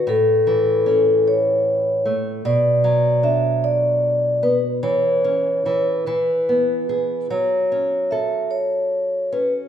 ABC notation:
X:1
M:6/8
L:1/8
Q:3/8=50
K:A
V:1 name="Vibraphone"
A2 A c2 z | d2 e d2 B | c2 c B2 z | c2 e c2 B |]
V:2 name="Nylon-string guitar"
A,, E, C3 A, | B,, F, D3 B, | E, C E, E, B, G | F, C A3 C |]